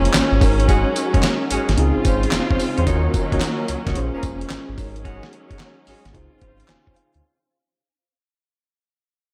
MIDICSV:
0, 0, Header, 1, 6, 480
1, 0, Start_track
1, 0, Tempo, 545455
1, 605, Time_signature, 4, 2, 24, 8
1, 8214, End_track
2, 0, Start_track
2, 0, Title_t, "Tine electric piano"
2, 0, Program_c, 0, 4
2, 0, Control_c, 0, 64, 127
2, 0, Note_on_c, 0, 61, 80
2, 0, Note_on_c, 0, 65, 75
2, 0, Note_on_c, 0, 68, 70
2, 0, Note_on_c, 0, 72, 89
2, 347, Note_off_c, 0, 61, 0
2, 358, Note_on_c, 0, 61, 78
2, 365, Note_on_c, 0, 63, 65
2, 367, Note_off_c, 0, 65, 0
2, 370, Note_off_c, 0, 68, 0
2, 370, Note_off_c, 0, 72, 0
2, 372, Note_on_c, 0, 66, 72
2, 377, Control_c, 0, 64, 0
2, 379, Note_on_c, 0, 70, 84
2, 533, Control_c, 0, 64, 127
2, 1537, Note_off_c, 0, 61, 0
2, 1541, Note_off_c, 0, 63, 0
2, 1544, Note_off_c, 0, 66, 0
2, 1548, Note_off_c, 0, 70, 0
2, 1558, Note_on_c, 0, 60, 75
2, 1563, Note_on_c, 0, 63, 78
2, 1570, Note_on_c, 0, 65, 71
2, 1578, Control_c, 0, 64, 0
2, 1580, Note_on_c, 0, 68, 88
2, 1726, Control_c, 0, 64, 127
2, 2502, Note_off_c, 0, 60, 0
2, 2504, Note_off_c, 0, 63, 0
2, 2508, Note_off_c, 0, 65, 0
2, 2513, Note_off_c, 0, 68, 0
2, 2516, Note_on_c, 0, 61, 74
2, 2525, Note_on_c, 0, 65, 72
2, 2533, Note_on_c, 0, 66, 71
2, 2534, Control_c, 0, 64, 0
2, 2539, Note_on_c, 0, 70, 82
2, 2688, Control_c, 0, 64, 127
2, 3461, Note_off_c, 0, 61, 0
2, 3466, Note_off_c, 0, 65, 0
2, 3469, Note_off_c, 0, 66, 0
2, 3472, Note_off_c, 0, 70, 0
2, 3481, Note_on_c, 0, 61, 83
2, 3488, Note_on_c, 0, 65, 73
2, 3489, Note_on_c, 0, 68, 75
2, 3495, Note_on_c, 0, 72, 90
2, 3497, Control_c, 0, 64, 0
2, 3630, Control_c, 0, 64, 127
2, 4203, Note_off_c, 0, 61, 0
2, 4203, Note_on_c, 0, 63, 79
2, 4206, Note_off_c, 0, 65, 0
2, 4207, Note_off_c, 0, 68, 0
2, 4207, Note_on_c, 0, 66, 68
2, 4210, Note_off_c, 0, 72, 0
2, 4216, Control_c, 0, 64, 0
2, 4218, Note_on_c, 0, 70, 66
2, 4225, Note_on_c, 0, 73, 77
2, 4393, Control_c, 0, 64, 127
2, 5380, Note_off_c, 0, 63, 0
2, 5382, Note_off_c, 0, 66, 0
2, 5387, Note_off_c, 0, 70, 0
2, 5391, Note_off_c, 0, 73, 0
2, 5398, Note_on_c, 0, 63, 83
2, 5408, Note_on_c, 0, 65, 72
2, 5413, Note_on_c, 0, 68, 75
2, 5415, Control_c, 0, 64, 0
2, 5422, Note_on_c, 0, 72, 83
2, 5592, Control_c, 0, 64, 127
2, 5891, Note_on_c, 0, 80, 78
2, 6111, Note_off_c, 0, 80, 0
2, 6127, Note_on_c, 0, 77, 68
2, 6342, Note_off_c, 0, 63, 0
2, 6347, Note_off_c, 0, 65, 0
2, 6349, Note_off_c, 0, 77, 0
2, 6350, Note_off_c, 0, 68, 0
2, 6354, Note_off_c, 0, 72, 0
2, 6376, Control_c, 0, 64, 0
2, 8214, End_track
3, 0, Start_track
3, 0, Title_t, "Horn section"
3, 0, Program_c, 1, 61
3, 598, Note_on_c, 1, 61, 94
3, 602, Note_on_c, 1, 66, 89
3, 604, Note_on_c, 1, 56, 99
3, 604, Note_on_c, 1, 68, 107
3, 770, Note_off_c, 1, 61, 0
3, 772, Note_off_c, 1, 66, 0
3, 773, Note_off_c, 1, 56, 0
3, 773, Note_off_c, 1, 68, 0
3, 996, Note_on_c, 1, 61, 78
3, 1000, Note_on_c, 1, 66, 69
3, 1002, Note_on_c, 1, 56, 74
3, 1002, Note_on_c, 1, 68, 80
3, 1100, Note_off_c, 1, 61, 0
3, 1102, Note_off_c, 1, 56, 0
3, 1102, Note_off_c, 1, 66, 0
3, 1102, Note_off_c, 1, 68, 0
3, 1323, Note_on_c, 1, 61, 90
3, 1326, Note_on_c, 1, 66, 81
3, 1327, Note_on_c, 1, 56, 83
3, 1327, Note_on_c, 1, 68, 90
3, 1493, Note_off_c, 1, 61, 0
3, 1494, Note_off_c, 1, 66, 0
3, 1495, Note_off_c, 1, 56, 0
3, 1495, Note_off_c, 1, 68, 0
3, 1800, Note_on_c, 1, 61, 78
3, 1803, Note_on_c, 1, 65, 72
3, 1805, Note_on_c, 1, 60, 85
3, 1805, Note_on_c, 1, 72, 93
3, 1971, Note_off_c, 1, 61, 0
3, 1973, Note_off_c, 1, 60, 0
3, 1973, Note_off_c, 1, 65, 0
3, 1973, Note_off_c, 1, 72, 0
3, 2201, Note_on_c, 1, 61, 75
3, 2202, Note_on_c, 1, 65, 73
3, 2206, Note_on_c, 1, 60, 77
3, 2206, Note_on_c, 1, 72, 84
3, 2302, Note_off_c, 1, 61, 0
3, 2303, Note_off_c, 1, 65, 0
3, 2305, Note_off_c, 1, 60, 0
3, 2305, Note_off_c, 1, 72, 0
3, 2440, Note_on_c, 1, 61, 79
3, 2442, Note_on_c, 1, 65, 77
3, 2445, Note_on_c, 1, 60, 84
3, 2445, Note_on_c, 1, 72, 92
3, 2519, Note_on_c, 1, 63, 100
3, 2523, Note_on_c, 1, 66, 92
3, 2526, Note_off_c, 1, 61, 0
3, 2526, Note_on_c, 1, 61, 93
3, 2526, Note_on_c, 1, 73, 101
3, 2543, Note_off_c, 1, 65, 0
3, 2544, Note_off_c, 1, 60, 0
3, 2544, Note_off_c, 1, 72, 0
3, 2691, Note_off_c, 1, 63, 0
3, 2693, Note_off_c, 1, 66, 0
3, 2694, Note_off_c, 1, 61, 0
3, 2694, Note_off_c, 1, 73, 0
3, 2918, Note_on_c, 1, 63, 78
3, 2921, Note_on_c, 1, 66, 67
3, 2925, Note_on_c, 1, 61, 79
3, 2925, Note_on_c, 1, 73, 86
3, 3021, Note_off_c, 1, 63, 0
3, 3022, Note_off_c, 1, 66, 0
3, 3024, Note_off_c, 1, 61, 0
3, 3024, Note_off_c, 1, 73, 0
3, 3399, Note_on_c, 1, 63, 78
3, 3402, Note_on_c, 1, 66, 71
3, 3405, Note_on_c, 1, 61, 80
3, 3405, Note_on_c, 1, 73, 86
3, 3501, Note_off_c, 1, 63, 0
3, 3503, Note_off_c, 1, 66, 0
3, 3504, Note_off_c, 1, 61, 0
3, 3504, Note_off_c, 1, 73, 0
3, 3642, Note_on_c, 1, 61, 78
3, 3644, Note_on_c, 1, 68, 77
3, 3648, Note_on_c, 1, 58, 77
3, 3648, Note_on_c, 1, 70, 84
3, 3743, Note_off_c, 1, 61, 0
3, 3744, Note_off_c, 1, 68, 0
3, 3746, Note_off_c, 1, 58, 0
3, 3746, Note_off_c, 1, 70, 0
3, 4439, Note_on_c, 1, 61, 97
3, 4444, Note_on_c, 1, 66, 95
3, 4445, Note_on_c, 1, 56, 99
3, 4445, Note_on_c, 1, 68, 107
3, 4611, Note_off_c, 1, 61, 0
3, 4613, Note_off_c, 1, 66, 0
3, 4614, Note_off_c, 1, 56, 0
3, 4614, Note_off_c, 1, 68, 0
3, 4841, Note_on_c, 1, 61, 75
3, 4845, Note_on_c, 1, 66, 69
3, 4846, Note_on_c, 1, 56, 75
3, 4846, Note_on_c, 1, 68, 82
3, 4942, Note_off_c, 1, 61, 0
3, 4944, Note_off_c, 1, 66, 0
3, 4945, Note_off_c, 1, 56, 0
3, 4945, Note_off_c, 1, 68, 0
3, 5165, Note_on_c, 1, 61, 85
3, 5167, Note_on_c, 1, 66, 75
3, 5169, Note_on_c, 1, 56, 84
3, 5169, Note_on_c, 1, 68, 91
3, 5334, Note_off_c, 1, 61, 0
3, 5335, Note_off_c, 1, 66, 0
3, 5336, Note_off_c, 1, 56, 0
3, 5336, Note_off_c, 1, 68, 0
3, 5643, Note_on_c, 1, 61, 70
3, 5646, Note_on_c, 1, 65, 72
3, 5650, Note_on_c, 1, 60, 81
3, 5650, Note_on_c, 1, 72, 88
3, 5813, Note_off_c, 1, 61, 0
3, 5814, Note_off_c, 1, 65, 0
3, 5816, Note_off_c, 1, 60, 0
3, 5816, Note_off_c, 1, 72, 0
3, 6041, Note_on_c, 1, 61, 75
3, 6043, Note_on_c, 1, 65, 65
3, 6045, Note_on_c, 1, 60, 82
3, 6045, Note_on_c, 1, 72, 89
3, 6142, Note_off_c, 1, 61, 0
3, 6143, Note_off_c, 1, 65, 0
3, 6144, Note_off_c, 1, 60, 0
3, 6144, Note_off_c, 1, 72, 0
3, 8214, End_track
4, 0, Start_track
4, 0, Title_t, "String section"
4, 0, Program_c, 2, 48
4, 0, Note_on_c, 2, 56, 69
4, 0, Note_on_c, 2, 58, 64
4, 0, Note_on_c, 2, 61, 88
4, 353, Note_off_c, 2, 56, 0
4, 361, Note_off_c, 2, 58, 0
4, 364, Note_on_c, 2, 56, 69
4, 367, Note_on_c, 2, 54, 79
4, 1538, Note_off_c, 2, 61, 0
4, 1552, Note_off_c, 2, 56, 0
4, 1554, Note_off_c, 2, 54, 0
4, 1566, Note_on_c, 2, 49, 79
4, 1566, Note_on_c, 2, 65, 82
4, 1567, Note_on_c, 2, 56, 72
4, 1567, Note_on_c, 2, 60, 71
4, 2515, Note_off_c, 2, 65, 0
4, 2516, Note_off_c, 2, 49, 0
4, 2516, Note_off_c, 2, 56, 0
4, 2516, Note_off_c, 2, 60, 0
4, 2521, Note_on_c, 2, 54, 99
4, 2521, Note_on_c, 2, 58, 81
4, 2522, Note_on_c, 2, 51, 86
4, 2524, Note_on_c, 2, 61, 82
4, 3473, Note_off_c, 2, 54, 0
4, 3473, Note_off_c, 2, 58, 0
4, 3474, Note_off_c, 2, 51, 0
4, 3475, Note_off_c, 2, 61, 0
4, 3486, Note_on_c, 2, 56, 79
4, 3488, Note_on_c, 2, 58, 62
4, 3488, Note_on_c, 2, 61, 80
4, 4199, Note_off_c, 2, 58, 0
4, 4199, Note_off_c, 2, 61, 0
4, 4208, Note_on_c, 2, 54, 77
4, 4208, Note_on_c, 2, 61, 84
4, 5394, Note_off_c, 2, 54, 0
4, 5394, Note_off_c, 2, 61, 0
4, 5402, Note_on_c, 2, 49, 70
4, 5404, Note_on_c, 2, 60, 68
4, 5404, Note_on_c, 2, 65, 82
4, 6337, Note_off_c, 2, 56, 0
4, 6354, Note_off_c, 2, 49, 0
4, 6355, Note_off_c, 2, 60, 0
4, 6355, Note_off_c, 2, 65, 0
4, 8214, End_track
5, 0, Start_track
5, 0, Title_t, "Sub bass"
5, 0, Program_c, 3, 38
5, 126, Note_on_c, 3, 32, 52
5, 190, Note_off_c, 3, 32, 0
5, 280, Note_on_c, 3, 32, 83
5, 344, Note_off_c, 3, 32, 0
5, 366, Note_on_c, 3, 32, 114
5, 739, Note_off_c, 3, 32, 0
5, 1007, Note_on_c, 3, 30, 86
5, 1068, Note_off_c, 3, 30, 0
5, 1328, Note_on_c, 3, 32, 53
5, 1391, Note_off_c, 3, 32, 0
5, 1484, Note_on_c, 3, 32, 87
5, 1547, Note_off_c, 3, 32, 0
5, 1565, Note_on_c, 3, 37, 106
5, 1689, Note_off_c, 3, 37, 0
5, 1727, Note_on_c, 3, 32, 48
5, 1759, Note_off_c, 3, 32, 0
5, 1806, Note_on_c, 3, 32, 90
5, 1992, Note_off_c, 3, 32, 0
5, 2052, Note_on_c, 3, 29, 56
5, 2113, Note_off_c, 3, 29, 0
5, 2207, Note_on_c, 3, 29, 85
5, 2269, Note_off_c, 3, 29, 0
5, 2447, Note_on_c, 3, 40, 96
5, 2509, Note_off_c, 3, 40, 0
5, 2527, Note_on_c, 3, 39, 120
5, 2712, Note_off_c, 3, 39, 0
5, 2927, Note_on_c, 3, 37, 89
5, 2989, Note_off_c, 3, 37, 0
5, 3248, Note_on_c, 3, 37, 54
5, 3311, Note_off_c, 3, 37, 0
5, 3406, Note_on_c, 3, 37, 94
5, 3468, Note_off_c, 3, 37, 0
5, 3489, Note_on_c, 3, 34, 107
5, 3611, Note_off_c, 3, 34, 0
5, 3648, Note_on_c, 3, 29, 51
5, 3679, Note_off_c, 3, 29, 0
5, 3728, Note_on_c, 3, 29, 91
5, 3913, Note_off_c, 3, 29, 0
5, 3967, Note_on_c, 3, 32, 51
5, 4030, Note_off_c, 3, 32, 0
5, 4126, Note_on_c, 3, 32, 85
5, 4188, Note_off_c, 3, 32, 0
5, 4206, Note_on_c, 3, 32, 114
5, 4579, Note_off_c, 3, 32, 0
5, 4847, Note_on_c, 3, 30, 86
5, 4908, Note_off_c, 3, 30, 0
5, 5169, Note_on_c, 3, 32, 50
5, 5232, Note_off_c, 3, 32, 0
5, 5327, Note_on_c, 3, 32, 96
5, 5388, Note_off_c, 3, 32, 0
5, 5410, Note_on_c, 3, 37, 103
5, 5532, Note_off_c, 3, 37, 0
5, 5572, Note_on_c, 3, 32, 47
5, 5602, Note_off_c, 3, 32, 0
5, 5648, Note_on_c, 3, 32, 92
5, 5834, Note_off_c, 3, 32, 0
5, 5891, Note_on_c, 3, 29, 51
5, 5953, Note_off_c, 3, 29, 0
5, 6050, Note_on_c, 3, 29, 88
5, 6110, Note_off_c, 3, 29, 0
5, 6293, Note_on_c, 3, 38, 96
5, 6352, Note_off_c, 3, 38, 0
5, 8214, End_track
6, 0, Start_track
6, 0, Title_t, "Drums"
6, 45, Note_on_c, 9, 42, 55
6, 121, Note_on_c, 9, 39, 99
6, 126, Note_off_c, 9, 42, 0
6, 126, Note_on_c, 9, 38, 124
6, 126, Note_on_c, 9, 42, 70
6, 127, Note_on_c, 9, 54, 87
6, 209, Note_off_c, 9, 39, 0
6, 214, Note_off_c, 9, 38, 0
6, 214, Note_off_c, 9, 42, 0
6, 215, Note_off_c, 9, 54, 0
6, 364, Note_on_c, 9, 36, 97
6, 366, Note_on_c, 9, 46, 65
6, 367, Note_on_c, 9, 54, 68
6, 452, Note_off_c, 9, 36, 0
6, 454, Note_off_c, 9, 46, 0
6, 455, Note_off_c, 9, 54, 0
6, 525, Note_on_c, 9, 42, 47
6, 604, Note_off_c, 9, 42, 0
6, 604, Note_on_c, 9, 36, 105
6, 604, Note_on_c, 9, 42, 75
6, 604, Note_on_c, 9, 54, 72
6, 692, Note_off_c, 9, 36, 0
6, 692, Note_off_c, 9, 42, 0
6, 692, Note_off_c, 9, 54, 0
6, 843, Note_on_c, 9, 54, 67
6, 846, Note_on_c, 9, 42, 70
6, 931, Note_off_c, 9, 54, 0
6, 934, Note_off_c, 9, 42, 0
6, 1005, Note_on_c, 9, 36, 86
6, 1006, Note_on_c, 9, 42, 58
6, 1082, Note_on_c, 9, 39, 91
6, 1084, Note_off_c, 9, 42, 0
6, 1084, Note_on_c, 9, 42, 71
6, 1087, Note_on_c, 9, 38, 122
6, 1088, Note_on_c, 9, 54, 82
6, 1093, Note_off_c, 9, 36, 0
6, 1170, Note_off_c, 9, 39, 0
6, 1172, Note_off_c, 9, 42, 0
6, 1175, Note_off_c, 9, 38, 0
6, 1176, Note_off_c, 9, 54, 0
6, 1323, Note_on_c, 9, 54, 69
6, 1325, Note_on_c, 9, 42, 100
6, 1411, Note_off_c, 9, 54, 0
6, 1413, Note_off_c, 9, 42, 0
6, 1485, Note_on_c, 9, 42, 54
6, 1487, Note_on_c, 9, 38, 61
6, 1562, Note_off_c, 9, 42, 0
6, 1562, Note_on_c, 9, 42, 83
6, 1575, Note_off_c, 9, 38, 0
6, 1650, Note_off_c, 9, 42, 0
6, 1802, Note_on_c, 9, 42, 72
6, 1805, Note_on_c, 9, 36, 99
6, 1805, Note_on_c, 9, 54, 72
6, 1890, Note_off_c, 9, 42, 0
6, 1893, Note_off_c, 9, 36, 0
6, 1893, Note_off_c, 9, 54, 0
6, 1964, Note_on_c, 9, 42, 54
6, 2036, Note_on_c, 9, 39, 93
6, 2042, Note_off_c, 9, 42, 0
6, 2042, Note_on_c, 9, 38, 117
6, 2042, Note_on_c, 9, 42, 71
6, 2042, Note_on_c, 9, 54, 84
6, 2124, Note_off_c, 9, 39, 0
6, 2130, Note_off_c, 9, 38, 0
6, 2130, Note_off_c, 9, 42, 0
6, 2130, Note_off_c, 9, 54, 0
6, 2205, Note_on_c, 9, 36, 95
6, 2283, Note_on_c, 9, 46, 67
6, 2284, Note_on_c, 9, 54, 65
6, 2293, Note_off_c, 9, 36, 0
6, 2371, Note_off_c, 9, 46, 0
6, 2372, Note_off_c, 9, 54, 0
6, 2442, Note_on_c, 9, 42, 47
6, 2524, Note_off_c, 9, 42, 0
6, 2524, Note_on_c, 9, 36, 107
6, 2524, Note_on_c, 9, 42, 75
6, 2524, Note_on_c, 9, 54, 70
6, 2612, Note_off_c, 9, 36, 0
6, 2612, Note_off_c, 9, 42, 0
6, 2612, Note_off_c, 9, 54, 0
6, 2761, Note_on_c, 9, 54, 64
6, 2764, Note_on_c, 9, 36, 98
6, 2764, Note_on_c, 9, 42, 63
6, 2849, Note_off_c, 9, 54, 0
6, 2852, Note_off_c, 9, 36, 0
6, 2852, Note_off_c, 9, 42, 0
6, 2924, Note_on_c, 9, 36, 88
6, 2924, Note_on_c, 9, 42, 57
6, 2997, Note_on_c, 9, 39, 89
6, 2999, Note_off_c, 9, 42, 0
6, 2999, Note_on_c, 9, 42, 73
6, 3003, Note_on_c, 9, 38, 121
6, 3004, Note_on_c, 9, 54, 91
6, 3012, Note_off_c, 9, 36, 0
6, 3085, Note_off_c, 9, 39, 0
6, 3087, Note_off_c, 9, 42, 0
6, 3091, Note_off_c, 9, 38, 0
6, 3092, Note_off_c, 9, 54, 0
6, 3241, Note_on_c, 9, 54, 66
6, 3242, Note_on_c, 9, 42, 90
6, 3329, Note_off_c, 9, 54, 0
6, 3330, Note_off_c, 9, 42, 0
6, 3402, Note_on_c, 9, 42, 54
6, 3403, Note_on_c, 9, 36, 94
6, 3405, Note_on_c, 9, 38, 66
6, 3480, Note_off_c, 9, 42, 0
6, 3480, Note_on_c, 9, 42, 78
6, 3491, Note_off_c, 9, 36, 0
6, 3493, Note_off_c, 9, 38, 0
6, 3568, Note_off_c, 9, 42, 0
6, 3720, Note_on_c, 9, 42, 66
6, 3723, Note_on_c, 9, 54, 70
6, 3725, Note_on_c, 9, 36, 93
6, 3808, Note_off_c, 9, 42, 0
6, 3811, Note_off_c, 9, 54, 0
6, 3813, Note_off_c, 9, 36, 0
6, 3883, Note_on_c, 9, 42, 52
6, 3958, Note_on_c, 9, 39, 94
6, 3964, Note_off_c, 9, 42, 0
6, 3964, Note_on_c, 9, 38, 107
6, 3964, Note_on_c, 9, 42, 77
6, 3964, Note_on_c, 9, 54, 84
6, 4046, Note_off_c, 9, 39, 0
6, 4052, Note_off_c, 9, 38, 0
6, 4052, Note_off_c, 9, 42, 0
6, 4052, Note_off_c, 9, 54, 0
6, 4204, Note_on_c, 9, 36, 89
6, 4206, Note_on_c, 9, 46, 64
6, 4206, Note_on_c, 9, 54, 69
6, 4292, Note_off_c, 9, 36, 0
6, 4294, Note_off_c, 9, 46, 0
6, 4294, Note_off_c, 9, 54, 0
6, 4364, Note_on_c, 9, 42, 49
6, 4445, Note_on_c, 9, 36, 112
6, 4446, Note_off_c, 9, 42, 0
6, 4446, Note_on_c, 9, 42, 74
6, 4533, Note_off_c, 9, 36, 0
6, 4534, Note_off_c, 9, 42, 0
6, 4604, Note_on_c, 9, 38, 73
6, 4688, Note_on_c, 9, 42, 64
6, 4692, Note_off_c, 9, 38, 0
6, 4776, Note_off_c, 9, 42, 0
6, 4846, Note_on_c, 9, 36, 88
6, 4846, Note_on_c, 9, 42, 55
6, 4922, Note_on_c, 9, 39, 97
6, 4924, Note_off_c, 9, 42, 0
6, 4924, Note_on_c, 9, 42, 68
6, 4928, Note_on_c, 9, 38, 120
6, 4934, Note_off_c, 9, 36, 0
6, 5010, Note_off_c, 9, 39, 0
6, 5012, Note_off_c, 9, 42, 0
6, 5016, Note_off_c, 9, 38, 0
6, 5166, Note_on_c, 9, 46, 91
6, 5254, Note_off_c, 9, 46, 0
6, 5327, Note_on_c, 9, 42, 53
6, 5330, Note_on_c, 9, 38, 64
6, 5408, Note_off_c, 9, 42, 0
6, 5408, Note_on_c, 9, 36, 107
6, 5408, Note_on_c, 9, 42, 76
6, 5418, Note_off_c, 9, 38, 0
6, 5496, Note_off_c, 9, 36, 0
6, 5496, Note_off_c, 9, 42, 0
6, 5644, Note_on_c, 9, 42, 65
6, 5647, Note_on_c, 9, 36, 94
6, 5732, Note_off_c, 9, 42, 0
6, 5735, Note_off_c, 9, 36, 0
6, 5806, Note_on_c, 9, 42, 57
6, 5881, Note_on_c, 9, 39, 92
6, 5886, Note_off_c, 9, 42, 0
6, 5886, Note_on_c, 9, 38, 109
6, 5886, Note_on_c, 9, 42, 69
6, 5969, Note_off_c, 9, 39, 0
6, 5974, Note_off_c, 9, 38, 0
6, 5974, Note_off_c, 9, 42, 0
6, 6048, Note_on_c, 9, 36, 97
6, 6128, Note_on_c, 9, 42, 70
6, 6136, Note_off_c, 9, 36, 0
6, 6216, Note_off_c, 9, 42, 0
6, 6286, Note_on_c, 9, 42, 44
6, 6374, Note_off_c, 9, 42, 0
6, 8214, End_track
0, 0, End_of_file